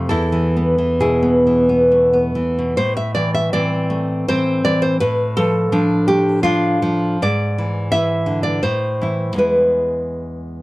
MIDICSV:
0, 0, Header, 1, 2, 480
1, 0, Start_track
1, 0, Key_signature, 0, "minor"
1, 0, Tempo, 913242
1, 52, Time_signature, 3, 2, 24, 8
1, 1011, Tempo, 859599
1, 1491, Tempo, 745342
1, 2451, Tempo, 716846
1, 3891, Tempo, 776197
1, 4371, Tempo, 709220
1, 5331, Tempo, 778210
1, 6566, End_track
2, 0, Start_track
2, 0, Title_t, "Nylon-string guitar"
2, 0, Program_c, 0, 24
2, 0, Note_on_c, 0, 57, 57
2, 48, Note_on_c, 0, 69, 89
2, 53, Note_off_c, 0, 57, 0
2, 55, Note_on_c, 0, 40, 77
2, 58, Note_on_c, 0, 64, 72
2, 170, Note_on_c, 0, 52, 58
2, 297, Note_on_c, 0, 59, 60
2, 405, Note_off_c, 0, 52, 0
2, 412, Note_on_c, 0, 52, 60
2, 512, Note_off_c, 0, 69, 0
2, 516, Note_off_c, 0, 64, 0
2, 527, Note_on_c, 0, 47, 65
2, 528, Note_on_c, 0, 68, 72
2, 533, Note_on_c, 0, 64, 61
2, 637, Note_off_c, 0, 59, 0
2, 644, Note_on_c, 0, 59, 56
2, 765, Note_off_c, 0, 52, 0
2, 771, Note_on_c, 0, 52, 55
2, 883, Note_off_c, 0, 59, 0
2, 887, Note_off_c, 0, 64, 0
2, 889, Note_on_c, 0, 59, 57
2, 1007, Note_on_c, 0, 57, 57
2, 1121, Note_off_c, 0, 59, 0
2, 1128, Note_on_c, 0, 59, 56
2, 1235, Note_off_c, 0, 68, 0
2, 1243, Note_off_c, 0, 52, 0
2, 1250, Note_on_c, 0, 52, 58
2, 1258, Note_off_c, 0, 47, 0
2, 1381, Note_on_c, 0, 47, 48
2, 1469, Note_off_c, 0, 40, 0
2, 1484, Note_on_c, 0, 72, 92
2, 1485, Note_off_c, 0, 47, 0
2, 1485, Note_off_c, 0, 52, 0
2, 1486, Note_off_c, 0, 59, 0
2, 1487, Note_on_c, 0, 45, 67
2, 1488, Note_off_c, 0, 57, 0
2, 1606, Note_off_c, 0, 72, 0
2, 1609, Note_on_c, 0, 76, 87
2, 1722, Note_off_c, 0, 76, 0
2, 1725, Note_on_c, 0, 74, 98
2, 1733, Note_on_c, 0, 52, 54
2, 1850, Note_off_c, 0, 74, 0
2, 1853, Note_on_c, 0, 76, 92
2, 1969, Note_off_c, 0, 76, 0
2, 1970, Note_off_c, 0, 52, 0
2, 1972, Note_on_c, 0, 74, 110
2, 1977, Note_on_c, 0, 52, 57
2, 1977, Note_on_c, 0, 60, 61
2, 2210, Note_on_c, 0, 57, 59
2, 2429, Note_off_c, 0, 74, 0
2, 2454, Note_off_c, 0, 52, 0
2, 2457, Note_off_c, 0, 60, 0
2, 2458, Note_on_c, 0, 72, 112
2, 2462, Note_on_c, 0, 52, 65
2, 2465, Note_on_c, 0, 60, 73
2, 2688, Note_off_c, 0, 72, 0
2, 2697, Note_off_c, 0, 52, 0
2, 2700, Note_on_c, 0, 74, 105
2, 2705, Note_on_c, 0, 52, 66
2, 2816, Note_on_c, 0, 72, 94
2, 2819, Note_off_c, 0, 74, 0
2, 2909, Note_off_c, 0, 45, 0
2, 2918, Note_off_c, 0, 60, 0
2, 2936, Note_off_c, 0, 57, 0
2, 2937, Note_off_c, 0, 72, 0
2, 2940, Note_on_c, 0, 71, 108
2, 2943, Note_off_c, 0, 52, 0
2, 2945, Note_on_c, 0, 45, 78
2, 3172, Note_off_c, 0, 71, 0
2, 3183, Note_on_c, 0, 69, 113
2, 3188, Note_on_c, 0, 53, 66
2, 3413, Note_off_c, 0, 53, 0
2, 3421, Note_on_c, 0, 53, 71
2, 3424, Note_on_c, 0, 62, 72
2, 3635, Note_off_c, 0, 69, 0
2, 3658, Note_on_c, 0, 67, 90
2, 3662, Note_on_c, 0, 57, 59
2, 3883, Note_off_c, 0, 67, 0
2, 3895, Note_on_c, 0, 65, 113
2, 3896, Note_off_c, 0, 62, 0
2, 3897, Note_off_c, 0, 53, 0
2, 3904, Note_on_c, 0, 53, 76
2, 3904, Note_on_c, 0, 62, 86
2, 4130, Note_off_c, 0, 53, 0
2, 4137, Note_on_c, 0, 53, 74
2, 4348, Note_off_c, 0, 45, 0
2, 4351, Note_off_c, 0, 62, 0
2, 4353, Note_off_c, 0, 65, 0
2, 4374, Note_off_c, 0, 57, 0
2, 4375, Note_off_c, 0, 53, 0
2, 4385, Note_on_c, 0, 44, 80
2, 4388, Note_on_c, 0, 74, 100
2, 4630, Note_on_c, 0, 52, 61
2, 4835, Note_off_c, 0, 74, 0
2, 4848, Note_off_c, 0, 52, 0
2, 4855, Note_on_c, 0, 76, 107
2, 4856, Note_on_c, 0, 52, 65
2, 4867, Note_on_c, 0, 64, 70
2, 5090, Note_on_c, 0, 50, 59
2, 5195, Note_off_c, 0, 76, 0
2, 5204, Note_on_c, 0, 74, 88
2, 5307, Note_off_c, 0, 52, 0
2, 5310, Note_off_c, 0, 44, 0
2, 5313, Note_off_c, 0, 64, 0
2, 5329, Note_off_c, 0, 74, 0
2, 5332, Note_off_c, 0, 50, 0
2, 5336, Note_on_c, 0, 72, 96
2, 5341, Note_on_c, 0, 45, 70
2, 5575, Note_on_c, 0, 52, 53
2, 5583, Note_on_c, 0, 64, 57
2, 5774, Note_off_c, 0, 52, 0
2, 5777, Note_on_c, 0, 40, 61
2, 5785, Note_off_c, 0, 45, 0
2, 5788, Note_on_c, 0, 56, 41
2, 5789, Note_off_c, 0, 72, 0
2, 5791, Note_off_c, 0, 64, 0
2, 5800, Note_on_c, 0, 64, 40
2, 5804, Note_on_c, 0, 71, 71
2, 6566, Note_off_c, 0, 40, 0
2, 6566, Note_off_c, 0, 56, 0
2, 6566, Note_off_c, 0, 64, 0
2, 6566, Note_off_c, 0, 71, 0
2, 6566, End_track
0, 0, End_of_file